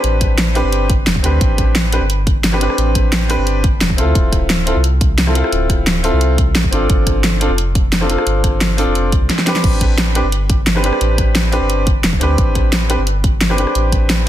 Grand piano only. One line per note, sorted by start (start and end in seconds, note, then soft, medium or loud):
0.00 0.53 C4 medium
0.00 0.53 D4 medium
0.00 0.54 G4 medium
0.00 0.54 B4 medium
0.55 0.87 C4 medium
0.55 0.88 D4 medium
0.55 0.88 G4 medium
0.55 0.88 B4 loud
1.22 1.90 C4 medium
1.22 1.90 D4 medium
1.22 1.91 G4 medium
1.22 1.91 B4 medium
1.92 2.00 C4 medium
1.92 2.00 D4 medium
1.92 2.01 G4 medium
1.92 2.01 B4 medium
2.52 2.58 C4 medium
2.52 2.59 D4 medium
2.52 2.59 G4 medium
2.52 2.60 B4 medium
2.59 3.27 C4 medium
2.59 3.27 D4 medium
2.59 3.28 G4 medium
2.59 3.29 B4 medium
3.29 3.62 C4 medium
3.29 3.62 D4 medium
3.29 3.62 G4 medium
3.29 3.62 B4 loud
3.96 4.64 C4 medium
3.96 4.65 E4 medium
3.96 4.65 F4 medium
3.96 4.66 A4 medium
4.66 4.74 C4 medium
4.66 4.75 E4 medium
4.66 4.75 F4 medium
4.66 4.75 A4 medium
5.26 5.32 C4 medium
5.26 5.33 E4 medium
5.26 5.34 F4 medium
5.26 5.34 A4 medium
5.34 6.01 C4 medium
5.34 6.02 E4 medium
5.34 6.02 F4 medium
5.34 6.03 A4 medium
6.03 6.36 C4 medium
6.03 6.36 E4 medium
6.03 6.36 F4 medium
6.03 6.37 A4 loud
6.71 7.38 C4 medium
6.71 7.39 D4 medium
6.71 7.39 F4 medium
6.71 7.40 A4 medium
7.40 7.48 C4 medium
7.40 7.49 D4 medium
7.40 7.49 F4 medium
7.40 7.49 A4 medium
8.00 8.06 C4 medium
8.00 8.08 D4 medium
8.00 8.08 F4 medium
8.00 8.08 A4 medium
8.08 8.75 C4 medium
8.08 8.76 D4 medium
8.08 8.77 F4 medium
8.08 8.77 A4 medium
8.77 9.10 C4 medium
8.77 9.10 D4 medium
8.77 9.11 F4 medium
8.77 9.11 A4 loud
9.45 10.13 C4 medium
9.45 10.13 D4 medium
9.45 10.14 G4 medium
9.45 10.14 B4 medium
10.15 10.23 C4 medium
10.15 10.23 D4 medium
10.15 10.23 G4 medium
10.15 10.24 B4 medium
10.75 10.81 C4 medium
10.75 10.82 D4 medium
10.75 10.82 G4 medium
10.75 10.82 B4 medium
10.82 11.50 C4 medium
10.82 11.50 D4 medium
10.82 11.51 G4 medium
10.82 11.51 B4 medium
11.52 11.84 C4 medium
11.52 11.85 D4 medium
11.52 11.85 G4 medium
11.52 11.85 B4 loud
12.19 12.87 C4 medium
12.19 12.87 D4 medium
12.19 12.88 G4 medium
12.19 12.89 B4 medium
12.89 12.97 C4 medium
12.89 12.97 D4 medium
12.89 12.98 G4 medium
12.89 12.98 B4 medium
13.49 13.55 C4 medium
13.49 13.56 D4 medium
13.49 13.56 G4 medium
13.49 13.57 B4 medium
13.57 14.24 C4 medium
13.57 14.25 D4 medium
13.57 14.25 G4 medium
13.57 14.26 B4 medium